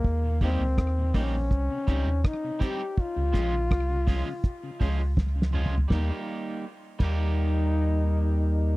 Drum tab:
CC |------------------------|------------------------|---------x--------------|
HH |---o--p--o--p--x-----x--|---x-----o--p--o--------|------------------------|
SD |------r--r--------r-----|------r-----------o-o---|o-----------------------|
T2 |------------------------|---------------------o--|------------------------|
FT |------------------------|----------------------oo|------------------------|
BD |o--o--o--o--o--o--o--o--|o--o--o--o--o--o--o-----|o--------o--------------|